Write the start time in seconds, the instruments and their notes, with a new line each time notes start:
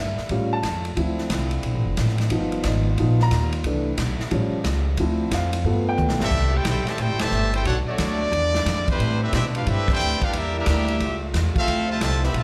Already playing: upright bass G2, trombone section D3 G3 A#3 E4
0.00 upright piano E5
0.17 muted upright bass stroke, snare
0.29 upright bass A2, trombone section C#3 A3 F4, upright piano G3 C#4 F4, kick, ride
0.53 upright piano A5
0.63 upright bass F2, kick, snare, hi-hat pedal, ride
0.85 ride
0.97 upright bass D2, trombone section D3 F3 C4 E4, upright piano F3 C4 E4, kick, ride
1.18 snare
1.30 upright bass C2, kick, snare, hi-hat pedal, ride
1.51 ride
1.63 upright bass B1, kick, ride
1.74 upright bass A1
1.85 upright bass F1
1.97 upright bass A1, kick, snare, hi-hat pedal, ride
2.08 snare
2.18 snare, ride
2.30 upright bass G1, trombone section D#3 G3 B3 F4, upright piano F3 B3 D#4, kick, ride
2.52 ride
2.63 upright bass G#1, upright piano D5, kick, snare, hi-hat pedal, ride
2.68 upright piano D#5
2.98 upright bass A#1, upright piano F3 B3 D#4, kick, ride
3.20 upright piano A#5, snare
3.31 upright bass D#2, kick, snare, hi-hat pedal, ride
3.52 ride
3.64 upright bass C2, trombone section C3 G3 A3 E4, upright piano E3 A3 D4, kick, ride
3.98 upright bass B1, kick, snare, hi-hat pedal, ride
4.20 muted upright bass stroke, snare
4.31 upright bass A1, trombone section C#3 F3 G3, upright piano F3 G3 C#4, kick, ride
4.52 muted upright bass stroke
4.64 upright bass C#2, kick, snare, hi-hat pedal, ride
4.97 upright bass D2, trombone section D3 C4, upright piano F3 C4 E4, kick, ride
5.31 upright bass F2, upright piano F5, kick, snare, hi-hat pedal, ride
5.53 ride
5.63 upright bass G2, trombone section D3 G3 B3, upright piano A3 B3 F4, kick
5.89 upright piano G5
5.97 upright bass D2, hi-hat pedal, high tom
6.09 upright bass B1, snare
6.20 upright bass G1, trombone section G3 A3 E4, trumpet section C4 G4 A4 E5, snare
6.31 upright bass C2, trombone section C3 G3 A3 E4, kick, crash
6.54 trombone section A3 E4 G4, trumpet section E4 A4 C5 G5
6.65 upright bass B1, trombone section A3 E4 G4, trumpet section E4 A4 C5 G5, kick, snare, hi-hat pedal, ride
6.85 trombone section A2 E3 A3, trumpet section G4 C5, muted upright bass stroke, snare, ride
6.90 trumpet section E5 A5
6.98 upright bass A1, trombone section A3 E4 G4, trumpet section E4 A4 C5 G5, kick, ride
7.09 upright bass G1
7.19 upright bass E1, trombone section A2 E3 A3, trumpet section G4 C5 E5 A5, snare, ride
7.31 upright bass G1, hi-hat pedal
7.54 trombone section A3 E4 G4, trumpet section E4 A4 C5 G5, ride
7.64 upright bass B1, trombone section D3 A3 B3 D4 F#4, trumpet section D4 A4 C#5 F#5, kick, ride
7.87 trombone section F#3 A3 D4, trumpet section A3 F#4 C#5 D5, muted upright bass stroke
7.98 upright bass D2, kick, snare, hi-hat pedal, ride
8.32 upright bass E2, trombone section D3 F3 G#3 E4, kick, ride
8.55 snare
8.66 upright bass F2, kick, snare, hi-hat pedal, ride
8.87 trombone section E3 G3 C4, trumpet section G3 E4 B4 C5, kick, ride
8.99 upright bass A2, trombone section D3 G3 A3 D4, kick, ride
9.21 trombone section G3 C4 E4, trumpet section C4 G4 B4 E5
9.33 upright bass B2, trombone section G3 C4 E4, trumpet section C4 G4 B4 E5, kick, snare, hi-hat pedal, ride
9.55 trumpet section D4 G4 B4 F5, trombone section F4, ride
9.66 upright bass G2, trombone section G3 C4 E4, trumpet section C4 G4 B4 E5, kick, ride
9.88 trombone section C4 E4 G4, trumpet section C5, kick, crash
9.92 trumpet section E4 B4 G5
10.00 upright bass D2, hi-hat pedal
10.21 trombone section F4, trumpet section G4 B4 F5, muted upright bass stroke, kick, ride
10.25 trumpet section D4
10.31 upright bass E2, trombone section D3 G3 A#3 E4, kick, ride
10.36 trumpet section D4 G4 A#4 E5
10.54 trombone section G3 A#3 E4, trumpet section D4 G4 A#4 E5
10.66 upright bass D2, kick, snare, hi-hat pedal, ride
10.88 ride
11.00 upright bass C#2, trombone section C#3 G3 A3 F4, kick, ride
11.33 upright bass E2, kick, snare, hi-hat pedal, ride
11.55 trombone section A3 C4 F4, trumpet section C4 A4 E5 F5, muted upright bass stroke, kick, ride
11.67 upright bass D2, trombone section D3 F3 C4 E4, kick, ride
11.89 trombone section C3 F3 A3, trumpet section F4 C5 E5 A5
12.00 upright bass C2, trombone section C3 F3 A3, trumpet section F4 C5 E5 A5, kick, snare, hi-hat pedal, ride
12.22 trombone section B3, trumpet section G4 C5 E5 B5, snare
12.33 upright bass B1, trombone section C3 F3 A3, trumpet section F4 C5 E5, kick, ride
12.37 trumpet section A5